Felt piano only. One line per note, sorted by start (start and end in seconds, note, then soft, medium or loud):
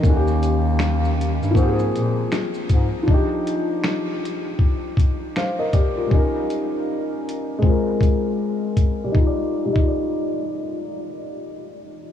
0.00 1.50 D#3 medium
0.00 1.52 A#3 medium
0.06 1.54 C#4 medium
0.06 0.15 F#4 medium
0.17 1.59 G4 medium
1.51 3.01 F3 medium
1.51 3.04 A#3 medium
1.58 3.06 C4 medium
1.58 1.67 G4 medium
1.69 3.11 G#4 medium
3.03 5.67 F3 medium
3.03 5.69 D4 medium
3.10 5.71 D#4 medium
3.10 5.34 G4 medium
5.37 5.58 C5 soft
5.37 5.58 F5 medium
5.59 5.73 A#4 medium
5.59 5.73 D#5 medium
5.73 5.95 G4 medium
5.73 5.95 D5 medium
5.97 6.33 F4 soft
5.97 6.16 A#4 medium
6.07 7.58 G3 medium
6.07 7.60 C#4 medium
6.14 7.61 D#4 medium
6.14 7.63 A#4 medium
7.59 9.10 G#3 medium
7.59 9.11 C4 medium
7.66 9.13 F4 medium
7.66 9.15 A#4 medium
9.04 9.33 G3 medium
9.12 9.37 D#4 medium
9.19 9.42 F4 medium
9.27 9.45 D5 medium
9.65 12.12 G3 medium
9.73 12.12 D#4 medium
9.81 12.12 F4 medium
9.88 12.12 D5 medium